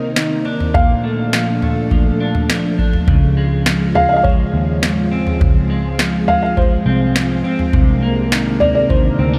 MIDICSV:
0, 0, Header, 1, 6, 480
1, 0, Start_track
1, 0, Tempo, 582524
1, 617, Time_signature, 4, 2, 24, 8
1, 7737, End_track
2, 0, Start_track
2, 0, Title_t, "Felt piano"
2, 0, Program_c, 0, 0
2, 0, Note_on_c, 0, 75, 76
2, 342, Note_off_c, 0, 75, 0
2, 612, Note_on_c, 0, 77, 96
2, 2262, Note_off_c, 0, 77, 0
2, 3257, Note_on_c, 0, 77, 93
2, 3357, Note_off_c, 0, 77, 0
2, 3369, Note_on_c, 0, 77, 82
2, 3399, Note_on_c, 0, 75, 61
2, 3404, Note_off_c, 0, 77, 0
2, 3431, Note_on_c, 0, 77, 81
2, 3433, Note_off_c, 0, 75, 0
2, 3488, Note_on_c, 0, 73, 63
2, 3496, Note_off_c, 0, 77, 0
2, 4179, Note_off_c, 0, 73, 0
2, 5174, Note_on_c, 0, 77, 93
2, 5283, Note_off_c, 0, 77, 0
2, 5295, Note_on_c, 0, 77, 77
2, 5415, Note_on_c, 0, 72, 68
2, 5420, Note_off_c, 0, 77, 0
2, 6103, Note_off_c, 0, 72, 0
2, 7087, Note_on_c, 0, 74, 98
2, 7197, Note_off_c, 0, 74, 0
2, 7210, Note_on_c, 0, 74, 88
2, 7329, Note_on_c, 0, 72, 73
2, 7337, Note_off_c, 0, 74, 0
2, 7737, Note_off_c, 0, 72, 0
2, 7737, End_track
3, 0, Start_track
3, 0, Title_t, "String machine"
3, 0, Program_c, 1, 50
3, 0, Note_on_c, 1, 51, 72
3, 0, Note_on_c, 1, 60, 71
3, 0, Note_on_c, 1, 63, 70
3, 0, Note_on_c, 1, 70, 78
3, 587, Note_off_c, 1, 60, 0
3, 599, Note_off_c, 1, 63, 0
3, 600, Note_off_c, 1, 51, 0
3, 600, Note_off_c, 1, 70, 0
3, 618, Note_on_c, 1, 62, 65
3, 618, Note_on_c, 1, 69, 81
3, 619, Note_on_c, 1, 46, 66
3, 619, Note_on_c, 1, 53, 77
3, 2518, Note_off_c, 1, 62, 0
3, 2518, Note_off_c, 1, 69, 0
3, 2519, Note_off_c, 1, 46, 0
3, 2534, Note_on_c, 1, 56, 67
3, 2536, Note_on_c, 1, 65, 65
3, 2536, Note_on_c, 1, 68, 79
3, 6343, Note_off_c, 1, 65, 0
3, 6344, Note_off_c, 1, 68, 0
3, 6345, Note_off_c, 1, 53, 0
3, 6375, Note_on_c, 1, 48, 69
3, 6377, Note_on_c, 1, 70, 82
3, 6378, Note_on_c, 1, 62, 64
3, 7737, Note_off_c, 1, 48, 0
3, 7737, Note_off_c, 1, 56, 0
3, 7737, Note_off_c, 1, 62, 0
3, 7737, Note_off_c, 1, 70, 0
3, 7737, End_track
4, 0, Start_track
4, 0, Title_t, "Clean electric guitar"
4, 0, Program_c, 2, 27
4, 0, Note_on_c, 2, 48, 68
4, 0, Note_on_c, 2, 51, 53
4, 0, Note_on_c, 2, 58, 55
4, 123, Note_off_c, 2, 51, 0
4, 133, Note_on_c, 2, 51, 54
4, 374, Note_on_c, 2, 62, 54
4, 612, Note_off_c, 2, 48, 0
4, 615, Note_on_c, 2, 46, 70
4, 663, Note_off_c, 2, 51, 0
4, 851, Note_off_c, 2, 58, 0
4, 855, Note_on_c, 2, 57, 46
4, 1100, Note_on_c, 2, 53, 48
4, 1326, Note_off_c, 2, 57, 0
4, 1336, Note_on_c, 2, 57, 48
4, 1574, Note_off_c, 2, 53, 0
4, 1577, Note_on_c, 2, 53, 53
4, 1813, Note_off_c, 2, 62, 0
4, 1816, Note_on_c, 2, 62, 55
4, 2052, Note_off_c, 2, 53, 0
4, 2055, Note_on_c, 2, 53, 57
4, 2286, Note_off_c, 2, 62, 0
4, 2296, Note_on_c, 2, 62, 55
4, 2531, Note_off_c, 2, 46, 0
4, 2535, Note_on_c, 2, 49, 67
4, 2584, Note_off_c, 2, 57, 0
4, 2584, Note_off_c, 2, 62, 0
4, 2776, Note_on_c, 2, 56, 52
4, 3011, Note_off_c, 2, 53, 0
4, 3015, Note_on_c, 2, 53, 48
4, 3244, Note_off_c, 2, 56, 0
4, 3254, Note_on_c, 2, 56, 52
4, 3485, Note_off_c, 2, 53, 0
4, 3495, Note_on_c, 2, 53, 57
4, 3965, Note_off_c, 2, 53, 0
4, 3975, Note_on_c, 2, 53, 54
4, 4215, Note_on_c, 2, 60, 57
4, 4456, Note_off_c, 2, 49, 0
4, 4685, Note_off_c, 2, 56, 0
4, 4695, Note_on_c, 2, 56, 52
4, 4925, Note_off_c, 2, 53, 0
4, 4935, Note_on_c, 2, 53, 46
4, 5164, Note_off_c, 2, 56, 0
4, 5174, Note_on_c, 2, 56, 59
4, 5404, Note_off_c, 2, 53, 0
4, 5414, Note_on_c, 2, 53, 58
4, 5649, Note_off_c, 2, 60, 0
4, 5652, Note_on_c, 2, 60, 64
4, 5881, Note_off_c, 2, 53, 0
4, 5891, Note_on_c, 2, 53, 52
4, 6129, Note_off_c, 2, 60, 0
4, 6132, Note_on_c, 2, 60, 59
4, 6376, Note_on_c, 2, 48, 72
4, 6422, Note_off_c, 2, 53, 0
4, 6423, Note_off_c, 2, 56, 0
4, 6614, Note_on_c, 2, 58, 55
4, 6638, Note_off_c, 2, 60, 0
4, 6855, Note_on_c, 2, 51, 51
4, 7091, Note_off_c, 2, 58, 0
4, 7094, Note_on_c, 2, 58, 59
4, 7324, Note_off_c, 2, 51, 0
4, 7334, Note_on_c, 2, 51, 61
4, 7572, Note_on_c, 2, 60, 55
4, 7691, Note_off_c, 2, 60, 0
4, 7691, Note_on_c, 2, 62, 46
4, 7737, Note_off_c, 2, 48, 0
4, 7737, Note_off_c, 2, 51, 0
4, 7737, Note_off_c, 2, 58, 0
4, 7737, Note_off_c, 2, 62, 0
4, 7737, End_track
5, 0, Start_track
5, 0, Title_t, "Picked electric bass"
5, 0, Program_c, 3, 34
5, 2535, Note_on_c, 3, 37, 87
5, 3703, Note_off_c, 3, 37, 0
5, 3738, Note_on_c, 3, 39, 72
5, 4425, Note_off_c, 3, 39, 0
5, 4457, Note_on_c, 3, 37, 87
5, 5624, Note_off_c, 3, 37, 0
5, 5653, Note_on_c, 3, 36, 88
5, 6111, Note_off_c, 3, 36, 0
5, 6373, Note_on_c, 3, 36, 96
5, 7542, Note_off_c, 3, 36, 0
5, 7573, Note_on_c, 3, 38, 91
5, 7737, Note_off_c, 3, 38, 0
5, 7737, End_track
6, 0, Start_track
6, 0, Title_t, "Drums"
6, 135, Note_on_c, 9, 38, 101
6, 217, Note_off_c, 9, 38, 0
6, 498, Note_on_c, 9, 43, 55
6, 580, Note_off_c, 9, 43, 0
6, 615, Note_on_c, 9, 36, 92
6, 616, Note_on_c, 9, 43, 91
6, 698, Note_off_c, 9, 36, 0
6, 699, Note_off_c, 9, 43, 0
6, 1097, Note_on_c, 9, 38, 90
6, 1180, Note_off_c, 9, 38, 0
6, 1338, Note_on_c, 9, 43, 57
6, 1421, Note_off_c, 9, 43, 0
6, 1575, Note_on_c, 9, 43, 50
6, 1576, Note_on_c, 9, 36, 75
6, 1658, Note_off_c, 9, 36, 0
6, 1658, Note_off_c, 9, 43, 0
6, 1934, Note_on_c, 9, 43, 58
6, 2016, Note_off_c, 9, 43, 0
6, 2057, Note_on_c, 9, 38, 101
6, 2139, Note_off_c, 9, 38, 0
6, 2295, Note_on_c, 9, 36, 70
6, 2378, Note_off_c, 9, 36, 0
6, 2418, Note_on_c, 9, 43, 53
6, 2500, Note_off_c, 9, 43, 0
6, 2535, Note_on_c, 9, 36, 91
6, 2535, Note_on_c, 9, 43, 91
6, 2618, Note_off_c, 9, 36, 0
6, 2618, Note_off_c, 9, 43, 0
6, 3017, Note_on_c, 9, 38, 99
6, 3099, Note_off_c, 9, 38, 0
6, 3257, Note_on_c, 9, 43, 58
6, 3339, Note_off_c, 9, 43, 0
6, 3497, Note_on_c, 9, 43, 55
6, 3498, Note_on_c, 9, 36, 80
6, 3580, Note_off_c, 9, 43, 0
6, 3581, Note_off_c, 9, 36, 0
6, 3978, Note_on_c, 9, 38, 101
6, 4061, Note_off_c, 9, 38, 0
6, 4340, Note_on_c, 9, 43, 56
6, 4423, Note_off_c, 9, 43, 0
6, 4458, Note_on_c, 9, 36, 93
6, 4459, Note_on_c, 9, 43, 93
6, 4540, Note_off_c, 9, 36, 0
6, 4541, Note_off_c, 9, 43, 0
6, 4937, Note_on_c, 9, 38, 91
6, 5019, Note_off_c, 9, 38, 0
6, 5177, Note_on_c, 9, 43, 53
6, 5260, Note_off_c, 9, 43, 0
6, 5416, Note_on_c, 9, 43, 55
6, 5418, Note_on_c, 9, 36, 78
6, 5498, Note_off_c, 9, 43, 0
6, 5500, Note_off_c, 9, 36, 0
6, 5898, Note_on_c, 9, 38, 103
6, 5980, Note_off_c, 9, 38, 0
6, 6256, Note_on_c, 9, 43, 54
6, 6339, Note_off_c, 9, 43, 0
6, 6373, Note_on_c, 9, 43, 83
6, 6374, Note_on_c, 9, 36, 101
6, 6455, Note_off_c, 9, 43, 0
6, 6456, Note_off_c, 9, 36, 0
6, 6856, Note_on_c, 9, 38, 101
6, 6939, Note_off_c, 9, 38, 0
6, 7095, Note_on_c, 9, 43, 58
6, 7178, Note_off_c, 9, 43, 0
6, 7335, Note_on_c, 9, 36, 74
6, 7335, Note_on_c, 9, 43, 59
6, 7417, Note_off_c, 9, 43, 0
6, 7418, Note_off_c, 9, 36, 0
6, 7737, End_track
0, 0, End_of_file